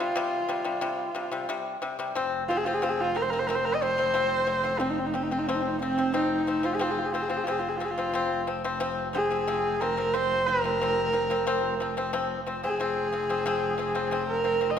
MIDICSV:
0, 0, Header, 1, 4, 480
1, 0, Start_track
1, 0, Key_signature, -4, "minor"
1, 0, Tempo, 664452
1, 1562, Time_signature, 4, 2, 24, 8
1, 10684, End_track
2, 0, Start_track
2, 0, Title_t, "Horsehead fiddle"
2, 0, Program_c, 0, 110
2, 0, Note_on_c, 0, 65, 92
2, 1057, Note_off_c, 0, 65, 0
2, 1793, Note_on_c, 0, 65, 70
2, 1855, Note_on_c, 0, 68, 69
2, 1866, Note_off_c, 0, 65, 0
2, 1914, Note_on_c, 0, 65, 68
2, 1925, Note_off_c, 0, 68, 0
2, 1973, Note_on_c, 0, 68, 67
2, 1984, Note_off_c, 0, 65, 0
2, 2041, Note_on_c, 0, 65, 72
2, 2052, Note_off_c, 0, 68, 0
2, 2088, Note_on_c, 0, 68, 73
2, 2099, Note_off_c, 0, 65, 0
2, 2172, Note_on_c, 0, 65, 82
2, 2183, Note_off_c, 0, 68, 0
2, 2282, Note_on_c, 0, 70, 80
2, 2293, Note_off_c, 0, 65, 0
2, 2325, Note_on_c, 0, 72, 77
2, 2336, Note_off_c, 0, 70, 0
2, 2386, Note_on_c, 0, 70, 83
2, 2396, Note_off_c, 0, 72, 0
2, 2449, Note_on_c, 0, 72, 76
2, 2460, Note_off_c, 0, 70, 0
2, 2505, Note_on_c, 0, 70, 77
2, 2516, Note_off_c, 0, 72, 0
2, 2564, Note_on_c, 0, 72, 73
2, 2574, Note_off_c, 0, 70, 0
2, 2636, Note_on_c, 0, 70, 87
2, 2647, Note_off_c, 0, 72, 0
2, 2702, Note_on_c, 0, 75, 66
2, 2713, Note_off_c, 0, 70, 0
2, 2759, Note_on_c, 0, 72, 91
2, 2770, Note_off_c, 0, 75, 0
2, 3466, Note_on_c, 0, 60, 66
2, 3477, Note_off_c, 0, 72, 0
2, 3538, Note_on_c, 0, 63, 68
2, 3549, Note_off_c, 0, 60, 0
2, 3605, Note_on_c, 0, 60, 67
2, 3616, Note_off_c, 0, 63, 0
2, 3653, Note_on_c, 0, 63, 67
2, 3664, Note_off_c, 0, 60, 0
2, 3710, Note_on_c, 0, 60, 69
2, 3721, Note_off_c, 0, 63, 0
2, 3774, Note_on_c, 0, 63, 67
2, 3785, Note_off_c, 0, 60, 0
2, 3835, Note_on_c, 0, 60, 73
2, 3846, Note_off_c, 0, 63, 0
2, 3887, Note_on_c, 0, 63, 70
2, 3898, Note_off_c, 0, 60, 0
2, 3950, Note_on_c, 0, 60, 70
2, 3961, Note_off_c, 0, 63, 0
2, 4005, Note_on_c, 0, 63, 66
2, 4016, Note_off_c, 0, 60, 0
2, 4057, Note_on_c, 0, 60, 66
2, 4068, Note_off_c, 0, 63, 0
2, 4102, Note_on_c, 0, 63, 77
2, 4113, Note_off_c, 0, 60, 0
2, 4190, Note_on_c, 0, 60, 88
2, 4200, Note_off_c, 0, 63, 0
2, 4435, Note_off_c, 0, 60, 0
2, 4439, Note_on_c, 0, 63, 81
2, 4802, Note_on_c, 0, 65, 62
2, 4813, Note_off_c, 0, 63, 0
2, 4873, Note_on_c, 0, 68, 68
2, 4884, Note_off_c, 0, 65, 0
2, 4932, Note_on_c, 0, 65, 61
2, 4943, Note_off_c, 0, 68, 0
2, 4990, Note_on_c, 0, 68, 62
2, 5001, Note_off_c, 0, 65, 0
2, 5045, Note_on_c, 0, 65, 59
2, 5056, Note_off_c, 0, 68, 0
2, 5092, Note_on_c, 0, 68, 61
2, 5103, Note_off_c, 0, 65, 0
2, 5147, Note_on_c, 0, 65, 59
2, 5158, Note_off_c, 0, 68, 0
2, 5212, Note_on_c, 0, 68, 65
2, 5223, Note_off_c, 0, 65, 0
2, 5265, Note_on_c, 0, 65, 62
2, 5276, Note_off_c, 0, 68, 0
2, 5321, Note_on_c, 0, 68, 65
2, 5332, Note_off_c, 0, 65, 0
2, 5372, Note_on_c, 0, 65, 65
2, 5383, Note_off_c, 0, 68, 0
2, 5424, Note_on_c, 0, 68, 62
2, 5435, Note_off_c, 0, 65, 0
2, 5485, Note_on_c, 0, 65, 62
2, 5496, Note_off_c, 0, 68, 0
2, 5550, Note_on_c, 0, 68, 58
2, 5561, Note_off_c, 0, 65, 0
2, 5611, Note_on_c, 0, 65, 62
2, 5622, Note_off_c, 0, 68, 0
2, 5665, Note_on_c, 0, 68, 61
2, 5676, Note_off_c, 0, 65, 0
2, 5710, Note_on_c, 0, 65, 75
2, 5721, Note_off_c, 0, 68, 0
2, 6095, Note_off_c, 0, 65, 0
2, 6607, Note_on_c, 0, 68, 80
2, 7082, Note_on_c, 0, 70, 84
2, 7093, Note_off_c, 0, 68, 0
2, 7322, Note_on_c, 0, 72, 95
2, 7333, Note_off_c, 0, 70, 0
2, 7555, Note_on_c, 0, 70, 87
2, 7565, Note_off_c, 0, 72, 0
2, 8561, Note_off_c, 0, 70, 0
2, 9134, Note_on_c, 0, 68, 79
2, 10297, Note_off_c, 0, 68, 0
2, 10320, Note_on_c, 0, 70, 80
2, 10619, Note_on_c, 0, 75, 60
2, 10630, Note_off_c, 0, 70, 0
2, 10684, Note_off_c, 0, 75, 0
2, 10684, End_track
3, 0, Start_track
3, 0, Title_t, "Pipa"
3, 0, Program_c, 1, 105
3, 0, Note_on_c, 1, 48, 81
3, 2, Note_on_c, 1, 55, 93
3, 93, Note_off_c, 1, 48, 0
3, 98, Note_off_c, 1, 55, 0
3, 112, Note_on_c, 1, 48, 99
3, 121, Note_on_c, 1, 55, 118
3, 309, Note_off_c, 1, 48, 0
3, 313, Note_off_c, 1, 55, 0
3, 351, Note_on_c, 1, 48, 80
3, 357, Note_on_c, 1, 55, 90
3, 452, Note_off_c, 1, 48, 0
3, 455, Note_off_c, 1, 55, 0
3, 466, Note_on_c, 1, 48, 78
3, 471, Note_on_c, 1, 55, 81
3, 570, Note_off_c, 1, 48, 0
3, 572, Note_off_c, 1, 55, 0
3, 587, Note_on_c, 1, 48, 92
3, 593, Note_on_c, 1, 55, 102
3, 786, Note_off_c, 1, 48, 0
3, 790, Note_off_c, 1, 55, 0
3, 828, Note_on_c, 1, 48, 74
3, 836, Note_on_c, 1, 55, 82
3, 931, Note_off_c, 1, 48, 0
3, 935, Note_off_c, 1, 55, 0
3, 950, Note_on_c, 1, 48, 81
3, 956, Note_on_c, 1, 55, 89
3, 1052, Note_off_c, 1, 48, 0
3, 1055, Note_off_c, 1, 55, 0
3, 1075, Note_on_c, 1, 48, 95
3, 1080, Note_on_c, 1, 55, 107
3, 1271, Note_off_c, 1, 48, 0
3, 1273, Note_off_c, 1, 55, 0
3, 1313, Note_on_c, 1, 48, 81
3, 1318, Note_on_c, 1, 55, 85
3, 1414, Note_off_c, 1, 48, 0
3, 1416, Note_off_c, 1, 55, 0
3, 1436, Note_on_c, 1, 48, 75
3, 1442, Note_on_c, 1, 55, 84
3, 1535, Note_off_c, 1, 48, 0
3, 1538, Note_off_c, 1, 55, 0
3, 1556, Note_on_c, 1, 53, 91
3, 1563, Note_on_c, 1, 60, 99
3, 1751, Note_off_c, 1, 53, 0
3, 1754, Note_off_c, 1, 60, 0
3, 1806, Note_on_c, 1, 53, 64
3, 1810, Note_on_c, 1, 60, 75
3, 1900, Note_off_c, 1, 53, 0
3, 1903, Note_off_c, 1, 60, 0
3, 1922, Note_on_c, 1, 53, 69
3, 1930, Note_on_c, 1, 60, 70
3, 2018, Note_off_c, 1, 53, 0
3, 2022, Note_off_c, 1, 60, 0
3, 2037, Note_on_c, 1, 53, 87
3, 2046, Note_on_c, 1, 60, 93
3, 2232, Note_off_c, 1, 53, 0
3, 2236, Note_off_c, 1, 60, 0
3, 2275, Note_on_c, 1, 53, 67
3, 2282, Note_on_c, 1, 60, 70
3, 2375, Note_off_c, 1, 53, 0
3, 2378, Note_off_c, 1, 60, 0
3, 2405, Note_on_c, 1, 53, 59
3, 2408, Note_on_c, 1, 60, 70
3, 2500, Note_off_c, 1, 53, 0
3, 2502, Note_off_c, 1, 60, 0
3, 2519, Note_on_c, 1, 53, 77
3, 2527, Note_on_c, 1, 60, 90
3, 2713, Note_off_c, 1, 53, 0
3, 2717, Note_off_c, 1, 60, 0
3, 2759, Note_on_c, 1, 53, 62
3, 2764, Note_on_c, 1, 60, 70
3, 2857, Note_off_c, 1, 53, 0
3, 2860, Note_off_c, 1, 60, 0
3, 2876, Note_on_c, 1, 53, 66
3, 2881, Note_on_c, 1, 60, 70
3, 2976, Note_off_c, 1, 53, 0
3, 2979, Note_off_c, 1, 60, 0
3, 2989, Note_on_c, 1, 53, 84
3, 2996, Note_on_c, 1, 60, 94
3, 3189, Note_off_c, 1, 53, 0
3, 3192, Note_off_c, 1, 60, 0
3, 3227, Note_on_c, 1, 53, 69
3, 3232, Note_on_c, 1, 60, 72
3, 3332, Note_off_c, 1, 53, 0
3, 3334, Note_off_c, 1, 60, 0
3, 3349, Note_on_c, 1, 53, 62
3, 3356, Note_on_c, 1, 60, 69
3, 3452, Note_off_c, 1, 53, 0
3, 3456, Note_off_c, 1, 60, 0
3, 3465, Note_on_c, 1, 53, 79
3, 3473, Note_on_c, 1, 60, 81
3, 3667, Note_off_c, 1, 53, 0
3, 3671, Note_off_c, 1, 60, 0
3, 3711, Note_on_c, 1, 53, 68
3, 3720, Note_on_c, 1, 60, 68
3, 3814, Note_off_c, 1, 53, 0
3, 3818, Note_off_c, 1, 60, 0
3, 3839, Note_on_c, 1, 53, 64
3, 3843, Note_on_c, 1, 60, 71
3, 3938, Note_off_c, 1, 53, 0
3, 3939, Note_off_c, 1, 60, 0
3, 3963, Note_on_c, 1, 53, 85
3, 3967, Note_on_c, 1, 60, 92
3, 4156, Note_off_c, 1, 53, 0
3, 4158, Note_off_c, 1, 60, 0
3, 4203, Note_on_c, 1, 53, 66
3, 4208, Note_on_c, 1, 60, 78
3, 4300, Note_off_c, 1, 53, 0
3, 4303, Note_off_c, 1, 60, 0
3, 4319, Note_on_c, 1, 53, 64
3, 4324, Note_on_c, 1, 60, 76
3, 4418, Note_off_c, 1, 53, 0
3, 4421, Note_off_c, 1, 60, 0
3, 4432, Note_on_c, 1, 53, 77
3, 4437, Note_on_c, 1, 60, 96
3, 4631, Note_off_c, 1, 53, 0
3, 4633, Note_off_c, 1, 60, 0
3, 4676, Note_on_c, 1, 53, 61
3, 4682, Note_on_c, 1, 60, 73
3, 4777, Note_off_c, 1, 53, 0
3, 4780, Note_off_c, 1, 60, 0
3, 4790, Note_on_c, 1, 53, 67
3, 4797, Note_on_c, 1, 60, 74
3, 4894, Note_off_c, 1, 53, 0
3, 4897, Note_off_c, 1, 60, 0
3, 4908, Note_on_c, 1, 53, 83
3, 4918, Note_on_c, 1, 60, 92
3, 5109, Note_off_c, 1, 53, 0
3, 5114, Note_off_c, 1, 60, 0
3, 5158, Note_on_c, 1, 53, 63
3, 5164, Note_on_c, 1, 60, 81
3, 5258, Note_off_c, 1, 53, 0
3, 5261, Note_off_c, 1, 60, 0
3, 5270, Note_on_c, 1, 53, 66
3, 5274, Note_on_c, 1, 60, 69
3, 5374, Note_off_c, 1, 53, 0
3, 5376, Note_off_c, 1, 60, 0
3, 5396, Note_on_c, 1, 53, 81
3, 5404, Note_on_c, 1, 60, 90
3, 5593, Note_off_c, 1, 53, 0
3, 5597, Note_off_c, 1, 60, 0
3, 5636, Note_on_c, 1, 53, 67
3, 5644, Note_on_c, 1, 60, 68
3, 5737, Note_off_c, 1, 53, 0
3, 5741, Note_off_c, 1, 60, 0
3, 5762, Note_on_c, 1, 53, 69
3, 5769, Note_on_c, 1, 60, 69
3, 5860, Note_off_c, 1, 53, 0
3, 5864, Note_off_c, 1, 60, 0
3, 5877, Note_on_c, 1, 53, 84
3, 5888, Note_on_c, 1, 60, 98
3, 6074, Note_off_c, 1, 53, 0
3, 6079, Note_off_c, 1, 60, 0
3, 6120, Note_on_c, 1, 53, 66
3, 6124, Note_on_c, 1, 60, 74
3, 6219, Note_off_c, 1, 53, 0
3, 6221, Note_off_c, 1, 60, 0
3, 6244, Note_on_c, 1, 53, 75
3, 6249, Note_on_c, 1, 60, 87
3, 6342, Note_off_c, 1, 53, 0
3, 6343, Note_off_c, 1, 60, 0
3, 6358, Note_on_c, 1, 53, 94
3, 6362, Note_on_c, 1, 60, 105
3, 6554, Note_off_c, 1, 53, 0
3, 6556, Note_off_c, 1, 60, 0
3, 6596, Note_on_c, 1, 53, 61
3, 6606, Note_on_c, 1, 60, 69
3, 6697, Note_off_c, 1, 53, 0
3, 6702, Note_off_c, 1, 60, 0
3, 6722, Note_on_c, 1, 53, 65
3, 6730, Note_on_c, 1, 60, 69
3, 6820, Note_off_c, 1, 53, 0
3, 6824, Note_off_c, 1, 60, 0
3, 6845, Note_on_c, 1, 53, 81
3, 6848, Note_on_c, 1, 60, 97
3, 7037, Note_off_c, 1, 53, 0
3, 7039, Note_off_c, 1, 60, 0
3, 7088, Note_on_c, 1, 53, 70
3, 7092, Note_on_c, 1, 60, 74
3, 7183, Note_off_c, 1, 53, 0
3, 7185, Note_off_c, 1, 60, 0
3, 7204, Note_on_c, 1, 53, 61
3, 7210, Note_on_c, 1, 60, 71
3, 7301, Note_off_c, 1, 53, 0
3, 7304, Note_off_c, 1, 60, 0
3, 7322, Note_on_c, 1, 53, 78
3, 7329, Note_on_c, 1, 60, 87
3, 7516, Note_off_c, 1, 53, 0
3, 7519, Note_off_c, 1, 60, 0
3, 7569, Note_on_c, 1, 53, 64
3, 7575, Note_on_c, 1, 60, 70
3, 7663, Note_off_c, 1, 53, 0
3, 7666, Note_off_c, 1, 60, 0
3, 7687, Note_on_c, 1, 53, 68
3, 7696, Note_on_c, 1, 60, 78
3, 7782, Note_off_c, 1, 53, 0
3, 7786, Note_off_c, 1, 60, 0
3, 7813, Note_on_c, 1, 53, 85
3, 7821, Note_on_c, 1, 60, 88
3, 8001, Note_off_c, 1, 53, 0
3, 8005, Note_off_c, 1, 60, 0
3, 8041, Note_on_c, 1, 53, 66
3, 8048, Note_on_c, 1, 60, 70
3, 8139, Note_off_c, 1, 53, 0
3, 8142, Note_off_c, 1, 60, 0
3, 8163, Note_on_c, 1, 53, 70
3, 8171, Note_on_c, 1, 60, 82
3, 8259, Note_off_c, 1, 53, 0
3, 8264, Note_off_c, 1, 60, 0
3, 8284, Note_on_c, 1, 53, 99
3, 8288, Note_on_c, 1, 60, 110
3, 8477, Note_off_c, 1, 53, 0
3, 8477, Note_off_c, 1, 60, 0
3, 8526, Note_on_c, 1, 53, 68
3, 8536, Note_on_c, 1, 60, 76
3, 8621, Note_off_c, 1, 53, 0
3, 8626, Note_off_c, 1, 60, 0
3, 8647, Note_on_c, 1, 53, 72
3, 8652, Note_on_c, 1, 60, 87
3, 8741, Note_off_c, 1, 53, 0
3, 8744, Note_off_c, 1, 60, 0
3, 8763, Note_on_c, 1, 53, 92
3, 8769, Note_on_c, 1, 60, 107
3, 8955, Note_off_c, 1, 53, 0
3, 8958, Note_off_c, 1, 60, 0
3, 9005, Note_on_c, 1, 53, 66
3, 9011, Note_on_c, 1, 60, 71
3, 9100, Note_off_c, 1, 53, 0
3, 9103, Note_off_c, 1, 60, 0
3, 9127, Note_on_c, 1, 53, 64
3, 9130, Note_on_c, 1, 60, 70
3, 9221, Note_off_c, 1, 53, 0
3, 9222, Note_off_c, 1, 60, 0
3, 9244, Note_on_c, 1, 53, 71
3, 9251, Note_on_c, 1, 60, 88
3, 9435, Note_off_c, 1, 53, 0
3, 9439, Note_off_c, 1, 60, 0
3, 9482, Note_on_c, 1, 53, 65
3, 9488, Note_on_c, 1, 60, 71
3, 9578, Note_off_c, 1, 53, 0
3, 9581, Note_off_c, 1, 60, 0
3, 9604, Note_on_c, 1, 53, 65
3, 9608, Note_on_c, 1, 60, 77
3, 9699, Note_off_c, 1, 53, 0
3, 9701, Note_off_c, 1, 60, 0
3, 9721, Note_on_c, 1, 53, 97
3, 9728, Note_on_c, 1, 60, 105
3, 9913, Note_off_c, 1, 53, 0
3, 9916, Note_off_c, 1, 60, 0
3, 9953, Note_on_c, 1, 53, 72
3, 9962, Note_on_c, 1, 60, 81
3, 10053, Note_off_c, 1, 53, 0
3, 10057, Note_off_c, 1, 60, 0
3, 10076, Note_on_c, 1, 53, 75
3, 10079, Note_on_c, 1, 60, 84
3, 10174, Note_off_c, 1, 53, 0
3, 10176, Note_off_c, 1, 60, 0
3, 10195, Note_on_c, 1, 53, 84
3, 10203, Note_on_c, 1, 60, 90
3, 10390, Note_off_c, 1, 53, 0
3, 10394, Note_off_c, 1, 60, 0
3, 10432, Note_on_c, 1, 53, 58
3, 10436, Note_on_c, 1, 60, 71
3, 10532, Note_off_c, 1, 53, 0
3, 10534, Note_off_c, 1, 60, 0
3, 10553, Note_on_c, 1, 53, 65
3, 10556, Note_on_c, 1, 60, 74
3, 10652, Note_off_c, 1, 53, 0
3, 10654, Note_off_c, 1, 60, 0
3, 10684, End_track
4, 0, Start_track
4, 0, Title_t, "Double bass"
4, 0, Program_c, 2, 43
4, 1566, Note_on_c, 2, 29, 59
4, 5400, Note_off_c, 2, 29, 0
4, 5404, Note_on_c, 2, 29, 65
4, 9233, Note_off_c, 2, 29, 0
4, 9238, Note_on_c, 2, 29, 59
4, 10684, Note_off_c, 2, 29, 0
4, 10684, End_track
0, 0, End_of_file